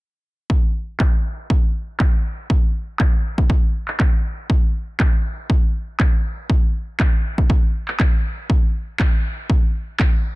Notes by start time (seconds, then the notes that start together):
0.50 kick
1.00 kick, clap
1.50 kick
2.00 kick, clap
2.50 kick
2.99 kick, clap
3.38 kick
3.50 kick
3.88 clap
4.00 kick, clap
4.50 kick
5.00 kick, clap
5.50 kick
6.00 kick, clap
6.50 kick
7.00 kick, clap
7.38 kick
7.50 kick
7.88 clap
8.00 kick, clap
8.50 kick
9.00 kick, clap
9.50 kick
10.00 kick, clap